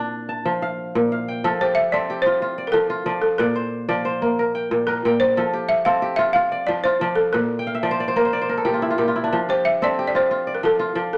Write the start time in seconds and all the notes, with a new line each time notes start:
Already playing: A#2 C4 D4 F4 C5 D5 F5
0.29 A5
0.45 F3
0.62 F5
0.95 A#2
1.12 F5
1.28 G5
1.44 F3 A4
1.61 G4 C5
1.75 E5
1.92 C4 A4 D5
2.10 G4
2.22 C5
2.26 F4
2.42 F4
2.58 D5
2.67 A#4
2.72 F3 A4
2.90 F4
3.06 F3 D5
3.21 A4
3.38 A#2 A#4 D5
3.56 C5
3.89 F3 D5
4.05 C5
4.22 A#3
4.39 A#4
4.55 G5
4.71 A#2
4.87 A#4
5.05 A#2 G5
5.20 C5
5.37 F3 A4
5.53 G4
5.69 E5
5.85 C4 A4 F5
6.02 G4
6.16 F4 E5
6.33 F4 F5
6.52 D5
6.67 F3 D5
6.84 F4 C5
7.01 F3 D5
7.15 A4
7.33 A#2 A#4
7.59 G5
7.67 F5
7.75 E5
7.83 F3 D5
7.91 C5
8.00 D5
8.08 C5
8.16 A#3 A#4
8.25 C5
8.33 D5
8.41 C5
8.49 A#4
8.57 A4
8.65 A#2 G4
8.74 F4
8.82 E4
8.90 F4
8.98 A#2 G4
9.08 F4
9.16 E4
9.24 D4
9.33 F3
9.49 G4 C5
9.65 E5
9.82 C4 A4 D5
9.99 G4
10.07 D5
10.15 F4 C5
10.31 F4
10.47 D5
10.55 A#4
10.63 F3 A4
10.79 F4
10.95 F3 D5
11.13 A4